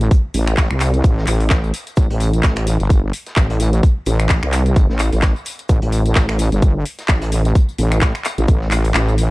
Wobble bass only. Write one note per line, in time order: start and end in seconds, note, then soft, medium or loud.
0.34 0.69 A1 loud
0.71 1.03 C2 loud
1.04 1.26 A1 medium
1.27 1.72 A1 loud
1.97 2.08 A1 loud
2.10 2.42 A1 loud
2.44 2.78 A1 loud
2.80 3.12 G1 loud
3.37 3.82 A1 loud
4.06 4.41 A1 loud
4.43 4.87 C2 loud
4.90 5.11 A1 loud
5.13 5.34 A1 loud
5.69 5.80 A1 loud
5.83 6.14 A1 loud
6.16 6.50 A1 loud
6.52 6.84 G1 medium
7.09 7.54 A1 loud
7.79 8.13 A1 loud
8.38 8.47 A1 loud
8.48 8.93 A1 medium
8.95 9.30 A1 loud